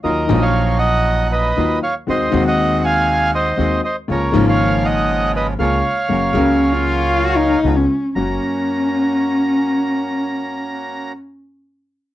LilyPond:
<<
  \new Staff \with { instrumentName = "Bandoneon" } { \time 4/4 \key fis \major \tempo 4 = 119 <ais' dis''>8. <cis'' eis''>8. <dis'' fis''>4 <b' dis''>4 <cis'' eis''>8 | <bis' dis''>8. <dis'' fis''>8. <eis'' gis''>4 <bis' dis''>4 <bis' dis''>8 | <ais' cis''>8. <cis'' eis''>8. <dis'' fis''>4 <b' dis''>8 <cis'' eis''>4~ | <cis'' eis''>2. r4 |
ais''1~ | ais''1 | }
  \new Staff \with { instrumentName = "Cello" } { \time 4/4 \key fis \major r1 | r1 | r1 | r8 cis'8. eis'4 fis'16 dis'8. cis'8. |
cis'1~ | cis'1 | }
  \new Staff \with { instrumentName = "Bandoneon" } { \time 4/4 \key fis \major <fis dis' eis'>8 <eis fis dis'>2~ <eis fis dis'>8 <fis dis' eis'>8 r8 | <gis bis fis'>8 <gis bis fis'>2~ <gis bis fis'>8 <gis bis fis'>8 r8 | <eis ais cis'>8 <eis ais cis'>2~ <eis ais cis'>8 <eis ais cis'>8 r8 | <fis ais cis'>8 <fis ais cis'>2~ <fis ais cis'>8 <eis b cis'>8 r8 |
<ais cis' fis'>1~ | <ais cis' fis'>1 | }
  \new Staff \with { instrumentName = "Grand piano" } { \clef bass \time 4/4 \key fis \major <dis, dis fis ais eis'>8 <ais,, ais, dis eis fis ais>2~ <ais,, ais, dis eis fis ais>8 <dis, dis fis ais eis'>8 r8 | <dis, dis gis bis fis'>8 <dis, dis gis bis fis'>2~ <dis, dis gis bis fis'>8 <dis, dis gis bis fis'>8 r8 | <cis, cis gis ais eis'>8 <gis,, gis, cis eis gis ais>2~ <gis,, gis, cis eis gis ais>8 <cis, cis gis ais eis'>8 r8 | <fis, cis fis ais fis'>8 <cis, cis fis ais ais'>2~ <cis, cis fis ais ais'>8 <cis, cis gis b eis'>8 r8 |
<fis, ais cis' fis'>1~ | <fis, ais cis' fis'>1 | }
  \new Staff \with { instrumentName = "Upright bass" } { \clef bass \time 4/4 \key fis \major dis,8 ais,,2~ ais,,8 dis,8 r8 | dis,8 dis,2~ dis,8 dis,8 r8 | cis,8 gis,,2~ gis,,8 cis,8 r8 | fis,,8 cis,2~ cis,8 cis,8 r8 |
fis,,8 r2. r8 | r1 | }
>>